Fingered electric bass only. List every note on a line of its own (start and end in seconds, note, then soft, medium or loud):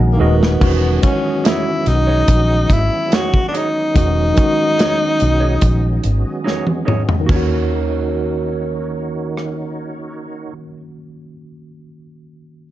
0.00 0.17 A#1 medium
0.20 0.56 D#1 medium
0.62 0.98 E1 loud
1.87 2.23 B1 medium
2.29 2.65 A#1 medium
2.70 2.88 G#1 medium
3.96 4.32 E1 medium
5.22 5.57 B1 medium
5.62 5.98 A#1 medium
6.05 6.22 G#1 medium
7.29 10.53 D#2 medium